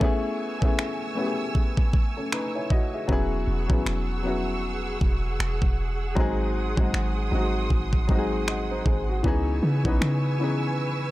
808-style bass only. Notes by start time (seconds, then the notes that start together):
3.09 E1
3.47 E1
3.70 G#1
3.86 E1
5.01 E1
5.40 E1
5.62 E1
6.17 G#1
6.78 G#1
6.94 G#1
7.32 G#1
7.70 G#1
8.86 G#1
9.24 C#2
9.63 C#3
9.85 B1
10.01 C#3